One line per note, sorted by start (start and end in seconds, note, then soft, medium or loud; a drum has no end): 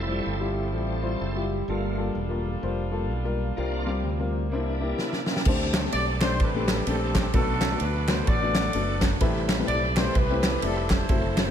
0.00 0.19 F1 medium
0.00 1.66 F3 medium
0.00 4.48 G3 medium
0.00 1.67 A3 medium
0.00 1.46 C4 soft
0.00 1.67 E4 medium
0.00 1.45 A4 medium
0.07 0.25 G3 medium
0.07 0.37 G3 soft
0.07 0.37 A3 soft
0.07 0.25 E4 medium
0.07 0.37 E4 soft
0.07 0.26 F4 medium
0.07 0.26 C5 medium
0.26 0.74 G1 medium
0.40 0.63 G3 medium
0.40 0.63 E4 medium
0.40 0.63 F4 medium
0.40 0.64 G4 medium
0.73 1.14 A1 medium
0.73 0.91 G3 medium
0.73 0.91 E4 medium
0.73 0.91 F4 medium
0.73 0.92 G4 medium
1.03 1.21 G3 medium
1.03 1.21 E4 medium
1.03 1.21 F4 medium
1.03 1.21 C5 medium
1.21 1.61 F#1 medium
1.36 1.58 G3 medium
1.36 1.58 E4 medium
1.36 1.59 F4 medium
1.36 1.59 G4 medium
1.68 2.08 G1 medium
1.68 2.40 G2 medium
1.68 1.87 G3 medium
1.68 2.03 A3 soft
1.68 1.87 A#3 medium
1.68 2.03 A#3 soft
1.68 3.56 D4 medium
1.68 4.49 F4 medium
1.68 1.87 F4 medium
1.68 2.03 F4 medium
1.68 3.56 A4 medium
1.68 1.87 A4 medium
1.97 2.15 G3 medium
1.97 2.15 A#3 medium
1.97 2.16 F4 medium
1.97 2.16 A4 medium
2.15 2.56 E1 medium
2.29 2.52 G3 medium
2.29 2.53 A#3 medium
2.29 2.53 F4 medium
2.29 2.53 A#4 medium
2.63 3.10 F1 medium
2.63 2.81 G3 medium
2.63 2.81 A#3 medium
2.63 2.81 F4 medium
2.63 2.81 C5 medium
2.91 3.10 G3 medium
2.91 3.10 A#3 medium
2.91 3.10 F4 medium
2.91 3.10 A4 medium
3.10 3.50 B1 medium
3.24 3.47 G3 medium
3.24 3.47 A#3 medium
3.24 3.48 F4 medium
3.24 3.48 A#4 medium
3.57 4.05 C2 medium
3.57 4.29 C3 medium
3.57 3.75 G3 medium
3.57 3.91 A#3 medium
3.57 5.45 A#3 medium
3.57 3.76 C4 medium
3.57 5.44 C4 medium
3.57 3.92 D4 soft
3.57 3.76 F4 medium
3.57 3.92 F4 medium
3.57 3.76 A#4 medium
3.86 4.04 G3 medium
3.86 4.04 C4 medium
3.86 4.04 F4 medium
3.86 4.05 G4 medium
4.05 4.52 D2 medium
4.19 4.42 G3 medium
4.19 4.42 C4 medium
4.19 4.42 F4 medium
4.19 4.42 A#4 medium
4.51 4.92 C2 medium
4.51 5.23 C3 medium
4.51 5.46 E3 medium
4.51 4.70 A#3 medium
4.51 5.42 A#3 medium
4.51 4.70 D4 medium
4.51 5.42 D4 soft
4.51 5.46 D4 medium
4.51 4.70 E4 medium
4.51 5.43 E4 medium
4.51 4.70 C5 medium
4.80 4.99 A#3 medium
4.80 4.99 D4 medium
4.80 4.99 E4 medium
4.80 4.99 G4 medium
4.98 5.26 E4 soft
4.98 5.26 C5 medium
4.98 snare soft
5.13 snare medium
5.26 5.73 A#4 soft
5.26 5.72 G5 medium
5.26 snare medium
5.36 snare medium
5.45 5.86 D2 loud
5.45 6.18 D3 medium
5.45 7.31 G3 medium
5.45 5.74 A3 medium
5.45 7.31 A3 medium
5.45 5.74 C4 medium
5.45 7.31 C4 medium
5.45 7.31 D4 medium
5.45 5.74 D4 medium
5.45 5.74 G4 medium
5.45 7.31 A4 medium
5.45 5.74 C5 loud
5.45 kick loud
5.45 crash loud
5.73 snare loud
5.73 clap loud
5.73 ride medium
5.85 6.07 A3 medium
5.85 6.07 C4 medium
5.85 6.07 D4 medium
5.85 6.07 G4 medium
5.85 6.07 C5 medium
5.92 6.40 B1 loud
5.92 6.06 D5 loud
5.92 ride medium
6.21 6.40 A3 medium
6.21 6.40 C4 medium
6.21 6.40 D4 medium
6.21 6.40 G4 medium
6.21 6.39 C5 loud
6.21 6.40 D5 medium
6.21 snare loud
6.21 clap loud
6.21 ride medium
6.40 6.80 A1 loud
6.40 7.30 G4 medium
6.40 6.87 B4 medium
6.40 kick loud
6.40 ride medium
6.55 6.77 A3 medium
6.55 6.78 C4 medium
6.55 6.78 D4 medium
6.55 6.78 G4 medium
6.55 6.78 A4 medium
6.68 snare loud
6.68 clap medium
6.68 ride medium
6.87 7.27 A#1 loud
6.87 7.20 A3 medium
6.87 7.21 C4 medium
6.87 7.31 C4 medium
6.87 7.21 D4 medium
6.87 7.21 G4 medium
6.87 7.31 A4 loud
6.87 7.21 A4 medium
6.87 ride medium
7.15 kick medium
7.15 snare loud
7.15 clap loud
7.15 ride medium
7.33 7.74 B1 loud
7.33 8.05 B2 medium
7.33 9.18 F#3 medium
7.33 7.61 A3 medium
7.33 9.18 A3 medium
7.33 7.61 B3 medium
7.33 9.18 B3 medium
7.33 9.17 D4 medium
7.33 8.24 D4 medium
7.33 7.61 D4 medium
7.33 8.24 F#4 medium
7.33 7.61 F#4 medium
7.33 9.18 A4 medium
7.33 7.78 A4 loud
7.33 7.61 B4 medium
7.33 kick loud
7.33 ride medium
7.61 snare loud
7.61 clap loud
7.61 ride medium
7.71 7.94 A3 medium
7.71 7.94 B3 medium
7.71 7.94 D4 medium
7.71 7.94 F#4 medium
7.71 7.94 B4 medium
7.80 8.21 D2 medium
7.80 8.09 B4 medium
7.80 ride medium
8.08 8.27 A3 medium
8.08 8.27 B3 medium
8.08 8.27 D4 medium
8.08 8.27 F#4 medium
8.08 8.28 B4 medium
8.08 8.28 C5 loud
8.08 snare loud
8.08 clap loud
8.08 ride medium
8.26 8.67 A1 loud
8.26 9.17 F#4 medium
8.26 9.17 A4 medium
8.26 9.02 D5 loud
8.26 kick loud
8.26 ride medium
8.42 8.64 A3 medium
8.42 8.65 B3 medium
8.42 8.65 D4 medium
8.42 8.65 F#4 medium
8.42 8.65 D5 medium
8.55 snare loud
8.55 clap medium
8.55 ride medium
8.73 9.14 F#1 loud
8.73 9.08 A3 medium
8.73 9.08 B3 medium
8.73 9.08 D4 medium
8.73 9.08 F#4 medium
8.73 9.08 A4 medium
8.73 ride medium
9.01 kick medium
9.01 snare loud
9.01 clap loud
9.01 ride medium
9.21 9.61 A1 loud
9.21 9.92 A2 medium
9.21 11.06 G3 medium
9.21 9.48 A3 medium
9.21 9.48 C4 medium
9.21 11.06 C4 medium
9.21 9.48 E4 medium
9.21 11.06 E4 medium
9.21 9.48 G4 medium
9.21 11.06 A4 loud
9.21 9.48 B4 loud
9.21 11.06 B4 medium
9.21 kick loud
9.21 ride medium
9.49 snare loud
9.49 clap loud
9.49 ride medium
9.59 9.81 A3 medium
9.59 9.82 C4 medium
9.59 9.82 E4 medium
9.59 9.82 G4 medium
9.59 9.82 B4 medium
9.67 10.08 B1 loud
9.67 9.94 D5 loud
9.67 ride medium
9.96 10.15 A3 medium
9.96 10.15 C4 medium
9.96 10.15 E4 medium
9.96 10.15 G4 medium
9.96 10.15 B4 medium
9.96 10.15 C5 medium
9.96 snare loud
9.96 clap loud
9.96 ride medium
10.15 10.55 C2 medium
10.15 10.89 E4 medium
10.15 11.06 G4 medium
10.15 10.62 B4 loud
10.15 kick loud
10.15 ride medium
10.30 10.53 A3 medium
10.30 10.53 C4 medium
10.30 10.53 E4 medium
10.30 10.53 G4 medium
10.30 10.53 C5 medium
10.43 snare loud
10.43 clap loud
10.43 ride medium
10.62 11.02 F1 medium
10.62 10.96 A3 medium
10.62 10.96 C4 medium
10.62 10.96 E4 medium
10.62 10.96 G4 medium
10.62 10.88 A4 loud
10.62 10.96 D5 medium
10.62 ride medium
10.89 11.51 E4 medium
10.89 11.51 A4 medium
10.89 11.51 C5 medium
10.89 kick medium
10.89 snare loud
10.89 clap loud
10.89 ride medium
11.09 11.49 F#1 loud
11.09 11.51 F#3 medium
11.09 11.36 A3 medium
11.09 11.51 A3 medium
11.09 11.51 C4 medium
11.09 11.36 C4 medium
11.09 11.51 E4 medium
11.09 11.36 E4 medium
11.09 11.36 F#4 medium
11.09 11.16 G4 medium
11.09 11.37 C5 medium
11.09 kick loud
11.09 ride medium
11.14 11.51 A4 medium
11.37 snare loud
11.37 clap loud
11.37 ride medium
11.47 11.51 A3 medium
11.47 11.51 C4 medium
11.47 11.51 E4 medium
11.47 11.51 F#4 medium
11.47 11.51 C5 medium